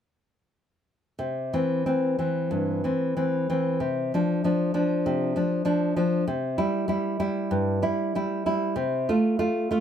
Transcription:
1.19 C3
1.53 E3 C4
1.86 E3 C4
2.19 E3 C4
2.51 G2
2.84 E3 C4
3.17 E3 C4
3.50 E3 C4
3.80 C3
4.14 F3 D4
4.44 F3 D4
4.74 F3 D4
5.06 C3
5.36 F3 D4
5.65 F3 D4
5.96 F3 D4
6.27 C3
6.58 G3 E4
6.88 G3 E4
7.20 G3 E4
7.51 G2
7.82 G3 E4
8.15 G3 E4
8.46 G3 E4
8.76 C3
9.09 A3 F4
9.39 A3 F4
9.71 A3 F4

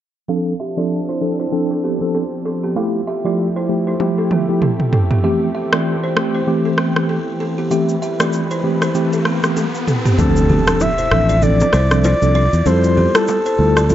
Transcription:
0.28 F3 C4 D4 A4 F5
0.60 G4 E5
0.77 F3 C4 D4 F4 A4 D5
1.09 E4 C5
1.21 F3 C4 D4 A4
1.40 E4 C5
1.52 F3 C4 D4 A4
1.71 C4 A4
1.84 B3 G4
2.01 F3 C4 D4 A4
2.15 C4 A4
2.46 C4 A4
2.63 B3 G4
2.76 F3 A3 E4 G4 A4 F5
3.07 G4 E5
3.25 F3 A3 E4 F4 G4 D5
3.56 E4 C5
3.69 F3 A3 E4 G4
3.87 E4 C5
4.00 F3 A3 E4 G4, high tom
4.18 C4 A4
4.31 B3 G4, mid tom
4.48 F3 A3 E4 G4
4.62 C4 A4, mid tom
4.80 mid tom
4.93 C4 A4, floor tom
5.11 B3 G4, floor tom
5.23 E3 A3 C4 G4 E5, riser
5.55 G4 E5
5.72 E3 A3 C4 F4 G4 D5, cross-stick
6.04 E4 C5
6.16 E3 A3 C4 G4, cross-stick
6.34 E4 C5
6.47 E3 A3 C4 G4
6.65 C4 A4
6.78 B3 G4, cross-stick
6.96 E3 A3 C4 G4, cross-stick
7.09 C4 A4
7.40 C4 A4
7.58 B3 G4
7.71 E3 A3 C4 G4 B4 E5, shaker
7.89 shaker
8.02 G4 E5, shaker
8.20 E3 A3 C4 F4 G4 D5, cross-stick, shaker
8.33 shaker
8.51 E4 C5, shaker
8.64 E3 A3 C4 G4
8.82 E4 C5, cross-stick, shaker
8.94 E3 A3 C4 G4, shaker
9.13 C4 A4, shaker
9.25 B3 G4, cross-stick
9.43 E3 A3 C4 G4, cross-stick, shaker
9.57 C4 A4, high tom, shaker
9.75 shaker
9.88 C4 A4, mid tom, shaker
10.05 B3 G4, floor tom, shaker
10.18 D2 F3 C4 D4 A4, impact, low conga, shaker
10.36 shaker
10.49 B3 G4, low conga
10.67 F3 C4 D4 A4, cross-stick, shaker
10.80 E5, high bongo, shaker
10.98 E4 C5, shaker
11.11 A1 F3 C4 D4 A4, cross-stick
11.29 F4 D5, shaker
11.42 F3 C4 D4 A4 D5, low conga, shaker
11.60 low bongo, shaker
11.73 C2 E4 C5, cross-stick, low bongo, shaker
11.91 F3 C4 D4 A4, cross-stick, shaker
12.04 F4 C5 D5, high bongo, shaker
12.22 C2 F3 C4 D4 A4, shaker
12.34 F4 D5, low bongo
12.53 E2, shaker
12.66 F2 G3 C4 E4 F4 A4 C5, low conga, shaker
12.84 shaker
12.97 B3 G4, low conga
13.15 G3 C4 E4 F4 A4, cross-stick, shaker
13.28 A4, high bongo, shaker
13.46 E4 C5, shaker
13.58 D2 G3 E4 F4 A4
13.77 F4 D5, cross-stick, shaker
13.89 G3 E4 F4 A4, low conga, shaker

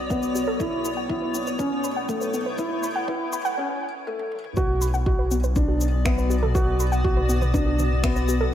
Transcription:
Already playing: B1 B3 F#4 C#5 D5
0.10 B3 E5, kick, shaker
0.23 B4, shaker
0.35 F#4, shaker
0.47 A4
0.59 B1 A3 E4 B4, kick, shaker
0.85 B5, shaker
0.97 F#5
1.09 E4, kick
1.22 B4
1.34 B3 E4, shaker
1.47 B4, shaker
1.59 C#4 B4, kick, shaker
1.84 B5, shaker
1.96 F#5
2.09 A3, kick, shaker
2.21 B4, shaker
2.33 B3, shaker
2.46 B4
2.58 E4 B4, kick, shaker
2.83 B5, shaker
2.96 F#5
3.08 E4 B4, kick
3.33 B5, shaker
3.45 F#5, shaker
3.57 C#4
4.07 A3, high tom
4.19 high tom
4.32 mid tom
4.44 mid tom
4.57 B1 B3 F#4 B4, kick, shaker
4.81 D5 B5, shaker
4.94 F#4 F#5, shaker
5.06 F#4, kick
5.19 B4
5.31 B3, shaker
5.44 B4, shaker
5.56 D4 B4, kick, shaker
5.68 F#4
5.81 shaker
6.05 B3 E5, finger snap, kick, shaker
6.18 B4, shaker
6.30 F#4, shaker
6.43 A4, mid tom
6.55 F#4 B4, kick, shaker
6.80 B5, shaker
6.92 F#5, shaker
7.04 F#4, kick
7.17 B4, mid tom
7.29 B3, shaker
7.42 B4, mid tom, shaker
7.54 D4 B4, kick, shaker
7.66 F#4
7.79 mid tom, shaker
8.04 B3 E5, finger snap, kick, shaker
8.16 B4, shaker
8.28 F#4, shaker
8.41 A4

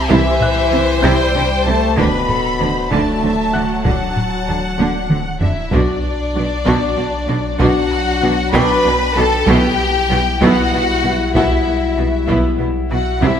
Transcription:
Already playing: C2 G4 G5 G6
0.09 C2 C3 E3 E4 C5 E5, taiko
0.41 E5 F#6, taiko low-mid
0.72 C2 C3 E4
1.03 C2 C3 G3 E4 G5 G6, taiko
1.35 C2 C3 D4
1.66 C2 C3 A3 E4 A5
1.97 D1 D2 B2 D3 F#3 D4 B4 B5, taiko
2.29 A4, taiko low-mid
2.59 D2 D3 D4 C5
2.90 D2 D3 A3 D4 D5 A5, taiko
3.22 D2 D3 C4 E5
3.53 D2 D3 D4 F#5 F#6
3.84 D2 D3 F#3 D4 F#5 A5, taiko
4.16 taiko low-mid
4.48 D2 D3 D4
4.79 D2 D3 D4, taiko high
5.10 D2 D3 C4, taiko mid
5.40 D2 D3 D4 E4 E5, taiko low
5.72 B1 B2 F#3 D4 F#4 D5, taiko
6.35 B1 B2 D4 F#4
6.66 B1 B2 D4 F#4 A5, taiko
6.97 B1 B2 D4 F#4
7.28 B1 B2 D4 F#4
7.59 B1 B2 D4 F#4 F#5, taiko
7.91 taiko rim
8.22 B1 B2 D4 F#4
8.53 B1 B2 F#3 D4 B4 G5 B5, taiko
8.85 B1 B2 F#3 D4
9.16 B1 B2 F#3 D4 A4 A5
9.47 B1 B2 G3 B3 E4 G4 G5, taiko
10.09 B1 B2 B3 E4
10.41 B1 B2 B3 E4 F#4 F#5, taiko
10.72 B1 B2 B3 E4
11.04 B1 B2 B3 E4
11.35 B1 B2 B3 E4 F#4 E5 F#5, taiko
11.97 B1 B2 B3 E4
12.28 B1 B2 B3 E4 E5, taiko
12.59 B1 B2 B3 E4
12.91 B1 B2 B3 E4 F#4 F#5, taiko rim
13.22 C2 C3 G3 E4 E5, taiko

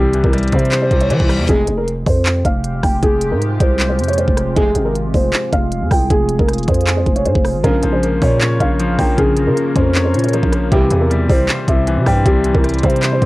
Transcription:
Already playing: C2 C3 E3 G3 C4 G4 C5
0.13 E3, closed hi-hat
0.24 C2 A#4, kick
0.33 G3, cross-stick, closed hi-hat
0.38 closed hi-hat
0.43 closed hi-hat
0.48 closed hi-hat
0.52 C3 C4 C5, kick, closed hi-hat
0.59 closed hi-hat
0.65 closed hi-hat
0.72 C5, clap, closed hi-hat, reverse cymbal
0.82 C5
0.91 C2 C3, kick, closed hi-hat
1.01 C#5, closed hi-hat
1.10 E3 C5, closed hi-hat
1.20 C2, kick
1.29 G3, cross-stick, open hi-hat
1.39 E2
1.49 F1 F2 C3 G#3 F4 G4 G#4, kick, closed hi-hat
1.67 F1, closed hi-hat
1.77 A#4
1.88 closed hi-hat
2.06 F2 C5, kick, open hi-hat
2.26 clap, closed hi-hat
2.45 F1 F5, kick, closed hi-hat
2.64 closed hi-hat
2.83 F1 G5, kick, cross-stick, open hi-hat
3.03 F1 G#4, kick, closed hi-hat
3.21 closed hi-hat
3.31 G#2 A#4
3.42 closed hi-hat
3.60 C2 C5, kick, closed hi-hat
3.79 clap, closed hi-hat
3.89 C5
3.99 F2, closed hi-hat
4.04 closed hi-hat
4.08 C#5, closed hi-hat
4.13 closed hi-hat
4.18 C5, closed hi-hat
4.28 F1, kick
4.37 cross-stick, closed hi-hat
4.56 F1 F2 C3 G#3 G#4, kick, closed hi-hat
4.75 G#1, closed hi-hat
4.85 A#4
4.95 closed hi-hat
5.14 F1 C5, kick, open hi-hat
5.33 clap, closed hi-hat
5.53 F1 F5, kick, closed hi-hat
5.72 closed hi-hat
5.82 F2
5.91 C2 G5, kick, cross-stick, open hi-hat
6.10 F1 G#4, kick, closed hi-hat
6.29 closed hi-hat
6.39 F1 A#4, kick
6.48 cross-stick, closed hi-hat
6.53 closed hi-hat
6.58 closed hi-hat
6.63 closed hi-hat
6.68 F2 C5, kick, closed hi-hat
6.74 closed hi-hat
6.81 closed hi-hat
6.87 clap, closed hi-hat
6.97 C5
7.06 F1, kick, closed hi-hat
7.16 C#5, closed hi-hat
7.26 G#2 C5, closed hi-hat
7.35 F1, kick
7.45 cross-stick, open hi-hat
7.54 G#1
7.64 A#1 C#2 A#2 C#3 F3 A#3 A#4, kick, closed hi-hat
7.83 A#1 F3, closed hi-hat
7.93 C5
8.03 A#3, closed hi-hat
8.22 A#2 C#4 C#5, kick, open hi-hat
8.41 C#5, clap, closed hi-hat
8.60 A#1 C#3 F5, kick, closed hi-hat
8.79 F3, closed hi-hat
8.99 A#1 A#3 G5, kick, cross-stick, open hi-hat
9.18 A#1 C#3 G#4, kick, closed hi-hat
9.37 F3, closed hi-hat
9.47 C#3 A#4
9.56 A#3, closed hi-hat
9.76 F2 C#4 C5, kick, closed hi-hat
9.95 C#5, clap, closed hi-hat
10.05 C5
10.14 A#2 C#3, closed hi-hat
10.19 closed hi-hat
10.24 C#5, closed hi-hat
10.29 closed hi-hat
10.33 F3 A#4, closed hi-hat
10.43 A#1, kick
10.52 A#3, cross-stick, closed hi-hat
10.72 C2 G2 C3 E3 G3 E4 G4 C5, kick, closed hi-hat
10.90 E2 E3, closed hi-hat
11.01 A#4
11.10 G3, closed hi-hat
11.29 C2 C4 C5, kick, open hi-hat
11.49 C5, clap, closed hi-hat
11.68 C2 C3 E5, kick, closed hi-hat
11.87 E3, closed hi-hat
11.97 C3
12.06 G2 G3 G5, kick, cross-stick, open hi-hat
12.26 C2 C3 G4, kick, closed hi-hat
12.44 E3, closed hi-hat
12.55 C2 A#4, kick
12.64 G3, cross-stick, closed hi-hat
12.69 closed hi-hat
12.74 closed hi-hat
12.79 closed hi-hat
12.83 C3 C4 C5, kick, closed hi-hat
12.90 closed hi-hat
12.96 closed hi-hat
13.03 C5, clap, closed hi-hat
13.13 C5
13.22 C2 C3, kick, closed hi-hat

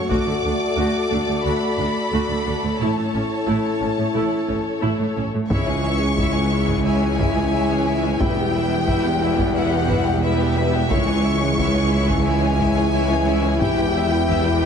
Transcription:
Already playing: A3 F#4 C#5
0.09 D2 A3 F#4 A4 D5 D6, taiko
0.26 D2 A3
0.43 D2 A3 D4
0.77 D2 A3 F#4
1.11 D2 A3 D4
1.28 D2 A3
1.44 D2 A3 F#4 B5
1.78 D2 A3 D4
2.11 D2 A3 F#4
2.28 D2 A3
2.46 D2 A3 D4
2.63 D2 A3
2.80 A1 A2 A3 C#4 E4 C#5 A5
2.96 A2 A3
3.14 A1 A2 A3 C#4
3.47 A1 A2 A3 E4
3.81 A1 A2 A3 C#4
3.98 A2 A3
4.14 A1 A2 A3 E4
4.48 A1 A2 A3 C#4
4.81 A1 A2 A3 E4
4.99 A2 A3
5.17 A1 A2 A3 C#4
5.33 A2 A3
5.49 C#2 C#3 E3 G#3 E4 C#5 E5 C#6, taiko
5.67 E3 C#4 G#4 C#5
5.84 G#3 E4 C#5 E5
6.00 E3 C#4 G#4 C#5
6.17 G#3 E4 C#5 E5, taiko
6.33 E3 C#4 G#4 C#5
6.51 G#3 E4 C#5 E5
6.67 E3 C#4 G#4 C#5, taiko
6.84 G#3 E4 C#5 E5 G#5
7.02 E3 C#4 G#4 C#5
7.18 G#3 E4 C#5 E5, taiko
7.36 E3 C#4 G#4 C#5
7.52 G#3 E4 C#5 E5
7.68 E3 C#4 G#4 C#5
7.86 G#3 E4 C#5 E5
8.02 E3 C#4 G#4 C#5
8.19 E1 E2 B2 G3 E4 B4 E5 G5, taiko
8.36 E3 B3 G4 G5
8.52 G3 E4 B4 E5
8.69 E3 B3 G4 G5
8.87 G3 E4 B4 E5, taiko
9.05 E3 B3 G4 G5
9.21 G3 E4 B4 E5
9.38 E3 B3 G4 G5, taiko
9.54 G3 E4 B4 E5 F#5
9.71 E3 B3 G4 G5
9.89 G3 E4 B4 E5, taiko
10.05 E3 B3 G4 G5
10.22 G3 E4 B4 E5
10.39 E3 B3 G4 G5
10.56 G3 E4 B4 E5
10.73 E3 B3 G4 G5
10.89 C#2 C#3 E3 G#3 E4 C#5 E5 C#6, taiko
11.07 E3 C#4 G#4 C#5
11.24 G#3 E4 C#5 E5
11.40 E3 C#4 G#4 C#5
11.57 G#3 E4 C#5 E5, taiko
11.74 E3 C#4 G#4 C#5
11.91 G#3 E4 C#5 E5
12.07 E3 C#4 G#4 C#5, taiko
12.24 G#3 E4 C#5 E5 G#5
12.42 E3 C#4 G#4 C#5
12.58 G#3 E4 C#5 E5, taiko
12.75 E3 C#4 G#4 C#5
12.91 G#3 E4 C#5 E5
13.08 E3 C#4 G#4 C#5
13.25 G#3 E4 C#5 E5
13.42 E3 C#4 G#4 C#5
13.58 E1 E2 G3 B3 E4 G4 E5 G5, taiko
13.62 B2
13.75 E3 E4 G4 G5
13.92 G3 E4 G4 E5
14.09 E3 E4 G4 G5
14.26 G3 E4 G4 E5, taiko
14.44 E3 E4 G4 G5

